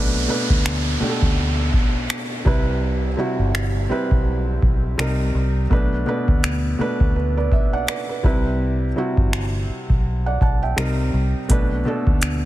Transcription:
Already playing: B1 B2 A3 D4 B4, downlifter
0.28 B2 A3 D4 B4
0.50 D2, kick
0.66 finger snap
1.00 B2 A3 D4 G4, muted fingered electric bass stroke
1.09 A4
1.22 D2, kick
1.73 B1, kick
2.10 finger snap
2.45 C2 C3 G3 E4 B4, kick
3.17 C3 G3 E4 F#4
3.39 G1
3.55 finger snap
3.89 G3 C4 E4 B4, muted fingered electric bass stroke
4.11 B1, kick
4.63 B1, kick
4.98 C2 C3 G3 D#4 A#4, finger snap
5.35 C2
5.70 B1 B2 A3 D4 B4, kick
6.06 B2 A3 D4 B4
6.28 D2, kick
6.44 finger snap
6.79 B2 A3 D4 B4, muted fingered electric bass stroke
7.00 D2, kick
7.16 B4
7.37 B4 D5
7.52 B1 E5, kick
7.73 D5 F#5
7.88 B4, finger snap
8.09 B4
8.23 C2 C3 G3 E4 B4, kick
8.96 C3 G3 E4 F#4
9.17 G1, kick
9.33 finger snap
9.69 muted fingered electric bass stroke
9.90 B1, kick
10.26 D5 F#5
10.41 B1 F#5 A5, kick
10.63 E5 G5
10.76 C2 C3 G3 D#4 A#4, finger snap
11.14 C2
11.49 B1 B2 A3 D4 B4, kick, closed hi-hat
11.85 B2 A3 D4 A4
12.07 D2, kick
12.22 finger snap, closed hi-hat

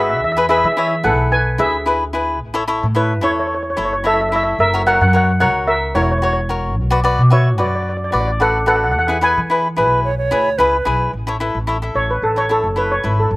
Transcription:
Already playing: G#1 D#4 F#4 B4
0.02 E5
0.10 E5
0.17 E5
0.22 E2 E5
0.32 E5
0.37 E4 G#4 B4
0.49 E4 G#4 B4 E5
0.57 E5
0.64 E3 E5
0.72 E5
0.77 E4 G#4 C#5 E5
0.87 E5
1.04 B1 E4 G#4 A4 B4 F#5
1.32 B4 G#5
1.58 D2 E4 G#4 B4 E5
1.86 E4 G#4 B4
2.13 E4 G#4 B4
2.41 A1
2.54 E4 A4 C#5
2.68 E4 A4 C#5
2.83 A2
2.95 E4 A4 B4 C#5
3.21 E2 E4 A4 C#5
3.31 C#5
3.40 C#5
3.47 C#5
3.55 C#5
3.63 C#5
3.70 C#5
3.77 F#1 E4 A4 C#5
3.85 C#5
3.93 C#5
4.04 E4 A4 C#5 E5
4.14 E5
4.21 E5
4.29 E4 A4 E5
4.33 C#5 E5
4.43 E5
4.59 F#1 A#4 E5
4.74 F#4 A#4 C#5
4.87 F#4 A#4 C#5 F#5
4.95 F#5
5.01 F#2 F#5
5.08 F#5
5.13 F#4 A#4 C#5 F#5
5.24 F#5
5.40 C#2 F#4 A#4 C#5 F#5
5.67 A#4 E5
5.95 E1 E4 F#4 A#4 C#5
6.02 C#5
6.12 C#5
6.18 F#4 C#5
6.23 A#4 C#5
6.33 C#5
6.49 F#4 A#4 C#5
6.77 B1
6.90 F#4 B4 D5
7.04 F#4 B4 D5
7.19 B2
7.30 F#4 B4 C#5 E5
7.58 F#2 F#4 B4 D5
7.67 D5
7.75 D5
7.83 D5
7.89 D5
7.97 D5
8.04 D5
8.11 A1 F#4 B4 D5
8.20 D5
8.28 D5
8.40 F#4 A4 B4 D5 F#5
8.66 F#4 A4 B4 D5 F#5
8.76 F#5
8.84 F#5
8.92 E2 F#5
8.99 F#5
9.07 E4 G#4 B4 F#5
9.21 E4 G#4 B4 G#5
9.38 E3
9.50 E4 G#4 B4
9.76 B1 E4 G#4 B4
10.04 C#5
10.18 C#5
10.31 D2 E4 G#4 B4
10.58 C#2 E4 G#4 B4
10.85 B1 E4 G#4 B4
11.13 A1
11.27 E4 A4 C#5
11.40 E4 A4 B4
11.55 A1
11.67 E4 A4 C#5
11.82 E4 A4 E5
11.95 A1 C#5
12.11 B4
12.22 A1 A4
12.36 E4 A4 C#5
12.49 E4 A4 C#5
12.64 F#1
12.76 E4 A4 B4 C#5
12.92 C#5
13.04 G#1 E4 A4 B4
13.20 A4
13.31 F#1

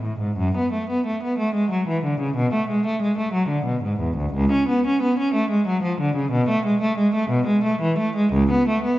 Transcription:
0.02 A2
0.20 G#2
0.37 F#2
0.56 B3
0.72 A3
0.90 B3
1.06 A3
1.23 B3
1.39 A3
1.55 G#3
1.71 F#3
1.88 E3
2.04 D3
2.20 C#3
2.36 B2
2.53 A3
2.70 G#3
2.86 A3
3.02 G#3
3.18 A3
3.33 F#3
3.48 D3
3.65 B2
3.83 G#2
4.00 E2
4.17 D2
4.33 C#2
4.52 C#4
4.68 B3
4.86 C#4
5.02 B3
5.18 C#4
5.34 A3
5.50 G#3
5.67 F#3
5.83 F3
6.00 D3
6.16 C#3
6.32 B2
6.49 A3
6.66 G#3
6.82 A3
6.98 G#3
7.15 A3
7.30 B2
7.47 G#3
7.64 A3
7.82 E3
7.98 A3
8.16 G#3
8.33 C#2
8.51 B3
8.68 A3
8.84 B3

